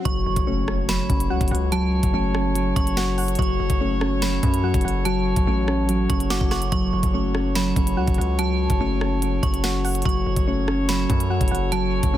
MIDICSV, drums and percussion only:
0, 0, Header, 1, 2, 480
1, 0, Start_track
1, 0, Key_signature, 3, "minor"
1, 0, Tempo, 416667
1, 62, Time_signature, 4, 2, 24, 8
1, 14027, End_track
2, 0, Start_track
2, 0, Title_t, "Drums"
2, 62, Note_on_c, 9, 36, 119
2, 62, Note_on_c, 9, 42, 82
2, 177, Note_off_c, 9, 36, 0
2, 177, Note_off_c, 9, 42, 0
2, 419, Note_on_c, 9, 42, 81
2, 421, Note_on_c, 9, 36, 93
2, 535, Note_off_c, 9, 42, 0
2, 536, Note_off_c, 9, 36, 0
2, 782, Note_on_c, 9, 37, 96
2, 897, Note_off_c, 9, 37, 0
2, 1022, Note_on_c, 9, 38, 112
2, 1023, Note_on_c, 9, 42, 76
2, 1138, Note_off_c, 9, 38, 0
2, 1138, Note_off_c, 9, 42, 0
2, 1263, Note_on_c, 9, 36, 112
2, 1264, Note_on_c, 9, 42, 91
2, 1378, Note_off_c, 9, 36, 0
2, 1379, Note_off_c, 9, 42, 0
2, 1386, Note_on_c, 9, 42, 77
2, 1501, Note_off_c, 9, 42, 0
2, 1622, Note_on_c, 9, 36, 99
2, 1622, Note_on_c, 9, 42, 64
2, 1702, Note_off_c, 9, 42, 0
2, 1702, Note_on_c, 9, 42, 66
2, 1737, Note_off_c, 9, 36, 0
2, 1782, Note_off_c, 9, 42, 0
2, 1782, Note_on_c, 9, 42, 65
2, 1897, Note_off_c, 9, 42, 0
2, 1982, Note_on_c, 9, 42, 83
2, 2097, Note_off_c, 9, 42, 0
2, 2339, Note_on_c, 9, 42, 82
2, 2341, Note_on_c, 9, 36, 93
2, 2455, Note_off_c, 9, 42, 0
2, 2456, Note_off_c, 9, 36, 0
2, 2703, Note_on_c, 9, 37, 99
2, 2818, Note_off_c, 9, 37, 0
2, 2943, Note_on_c, 9, 42, 78
2, 3058, Note_off_c, 9, 42, 0
2, 3183, Note_on_c, 9, 36, 115
2, 3184, Note_on_c, 9, 42, 90
2, 3299, Note_off_c, 9, 36, 0
2, 3299, Note_off_c, 9, 42, 0
2, 3306, Note_on_c, 9, 42, 79
2, 3422, Note_off_c, 9, 42, 0
2, 3422, Note_on_c, 9, 38, 118
2, 3537, Note_off_c, 9, 38, 0
2, 3663, Note_on_c, 9, 46, 61
2, 3778, Note_off_c, 9, 46, 0
2, 3783, Note_on_c, 9, 42, 62
2, 3863, Note_off_c, 9, 42, 0
2, 3863, Note_on_c, 9, 42, 60
2, 3903, Note_on_c, 9, 36, 120
2, 3942, Note_off_c, 9, 42, 0
2, 3942, Note_on_c, 9, 42, 62
2, 4018, Note_off_c, 9, 36, 0
2, 4057, Note_off_c, 9, 42, 0
2, 4260, Note_on_c, 9, 42, 77
2, 4261, Note_on_c, 9, 36, 91
2, 4375, Note_off_c, 9, 42, 0
2, 4377, Note_off_c, 9, 36, 0
2, 4623, Note_on_c, 9, 37, 103
2, 4738, Note_off_c, 9, 37, 0
2, 4862, Note_on_c, 9, 38, 114
2, 4863, Note_on_c, 9, 42, 75
2, 4978, Note_off_c, 9, 38, 0
2, 4978, Note_off_c, 9, 42, 0
2, 5103, Note_on_c, 9, 36, 110
2, 5104, Note_on_c, 9, 42, 94
2, 5219, Note_off_c, 9, 36, 0
2, 5219, Note_off_c, 9, 42, 0
2, 5226, Note_on_c, 9, 42, 80
2, 5341, Note_off_c, 9, 42, 0
2, 5462, Note_on_c, 9, 42, 65
2, 5463, Note_on_c, 9, 36, 102
2, 5542, Note_off_c, 9, 42, 0
2, 5542, Note_on_c, 9, 42, 64
2, 5578, Note_off_c, 9, 36, 0
2, 5622, Note_off_c, 9, 42, 0
2, 5622, Note_on_c, 9, 42, 66
2, 5738, Note_off_c, 9, 42, 0
2, 5822, Note_on_c, 9, 42, 85
2, 5937, Note_off_c, 9, 42, 0
2, 6180, Note_on_c, 9, 42, 82
2, 6182, Note_on_c, 9, 36, 92
2, 6295, Note_off_c, 9, 42, 0
2, 6297, Note_off_c, 9, 36, 0
2, 6543, Note_on_c, 9, 37, 99
2, 6658, Note_off_c, 9, 37, 0
2, 6784, Note_on_c, 9, 42, 81
2, 6899, Note_off_c, 9, 42, 0
2, 7023, Note_on_c, 9, 36, 111
2, 7024, Note_on_c, 9, 42, 94
2, 7139, Note_off_c, 9, 36, 0
2, 7139, Note_off_c, 9, 42, 0
2, 7146, Note_on_c, 9, 42, 81
2, 7261, Note_off_c, 9, 42, 0
2, 7262, Note_on_c, 9, 38, 120
2, 7377, Note_off_c, 9, 38, 0
2, 7382, Note_on_c, 9, 36, 102
2, 7498, Note_off_c, 9, 36, 0
2, 7502, Note_on_c, 9, 37, 95
2, 7502, Note_on_c, 9, 38, 70
2, 7617, Note_off_c, 9, 37, 0
2, 7617, Note_off_c, 9, 38, 0
2, 7623, Note_on_c, 9, 42, 75
2, 7738, Note_off_c, 9, 42, 0
2, 7742, Note_on_c, 9, 42, 85
2, 7743, Note_on_c, 9, 36, 119
2, 7857, Note_off_c, 9, 42, 0
2, 7858, Note_off_c, 9, 36, 0
2, 8100, Note_on_c, 9, 42, 78
2, 8102, Note_on_c, 9, 36, 88
2, 8215, Note_off_c, 9, 42, 0
2, 8217, Note_off_c, 9, 36, 0
2, 8463, Note_on_c, 9, 37, 97
2, 8578, Note_off_c, 9, 37, 0
2, 8703, Note_on_c, 9, 38, 114
2, 8703, Note_on_c, 9, 42, 76
2, 8818, Note_off_c, 9, 38, 0
2, 8818, Note_off_c, 9, 42, 0
2, 8944, Note_on_c, 9, 36, 111
2, 8944, Note_on_c, 9, 42, 91
2, 9059, Note_off_c, 9, 36, 0
2, 9059, Note_off_c, 9, 42, 0
2, 9066, Note_on_c, 9, 42, 80
2, 9182, Note_off_c, 9, 42, 0
2, 9303, Note_on_c, 9, 36, 105
2, 9303, Note_on_c, 9, 42, 62
2, 9383, Note_off_c, 9, 42, 0
2, 9383, Note_on_c, 9, 42, 63
2, 9418, Note_off_c, 9, 36, 0
2, 9463, Note_off_c, 9, 42, 0
2, 9463, Note_on_c, 9, 42, 66
2, 9578, Note_off_c, 9, 42, 0
2, 9662, Note_on_c, 9, 42, 84
2, 9778, Note_off_c, 9, 42, 0
2, 10020, Note_on_c, 9, 42, 82
2, 10022, Note_on_c, 9, 36, 88
2, 10135, Note_off_c, 9, 42, 0
2, 10137, Note_off_c, 9, 36, 0
2, 10383, Note_on_c, 9, 37, 98
2, 10498, Note_off_c, 9, 37, 0
2, 10624, Note_on_c, 9, 42, 76
2, 10739, Note_off_c, 9, 42, 0
2, 10864, Note_on_c, 9, 36, 110
2, 10864, Note_on_c, 9, 42, 94
2, 10979, Note_off_c, 9, 36, 0
2, 10979, Note_off_c, 9, 42, 0
2, 10987, Note_on_c, 9, 42, 78
2, 11102, Note_off_c, 9, 42, 0
2, 11103, Note_on_c, 9, 38, 124
2, 11218, Note_off_c, 9, 38, 0
2, 11343, Note_on_c, 9, 46, 62
2, 11458, Note_off_c, 9, 46, 0
2, 11463, Note_on_c, 9, 42, 64
2, 11543, Note_off_c, 9, 42, 0
2, 11543, Note_on_c, 9, 42, 62
2, 11583, Note_on_c, 9, 36, 123
2, 11623, Note_off_c, 9, 42, 0
2, 11623, Note_on_c, 9, 42, 60
2, 11698, Note_off_c, 9, 36, 0
2, 11738, Note_off_c, 9, 42, 0
2, 11940, Note_on_c, 9, 42, 77
2, 11942, Note_on_c, 9, 36, 93
2, 12055, Note_off_c, 9, 42, 0
2, 12057, Note_off_c, 9, 36, 0
2, 12302, Note_on_c, 9, 37, 101
2, 12418, Note_off_c, 9, 37, 0
2, 12543, Note_on_c, 9, 38, 113
2, 12543, Note_on_c, 9, 42, 76
2, 12658, Note_off_c, 9, 38, 0
2, 12658, Note_off_c, 9, 42, 0
2, 12783, Note_on_c, 9, 36, 116
2, 12784, Note_on_c, 9, 42, 94
2, 12898, Note_off_c, 9, 36, 0
2, 12899, Note_off_c, 9, 42, 0
2, 12906, Note_on_c, 9, 42, 79
2, 13021, Note_off_c, 9, 42, 0
2, 13142, Note_on_c, 9, 36, 101
2, 13142, Note_on_c, 9, 42, 64
2, 13222, Note_off_c, 9, 42, 0
2, 13222, Note_on_c, 9, 42, 62
2, 13258, Note_off_c, 9, 36, 0
2, 13302, Note_off_c, 9, 42, 0
2, 13302, Note_on_c, 9, 42, 65
2, 13417, Note_off_c, 9, 42, 0
2, 13502, Note_on_c, 9, 42, 86
2, 13617, Note_off_c, 9, 42, 0
2, 13859, Note_on_c, 9, 42, 81
2, 13861, Note_on_c, 9, 36, 90
2, 13975, Note_off_c, 9, 42, 0
2, 13977, Note_off_c, 9, 36, 0
2, 14027, End_track
0, 0, End_of_file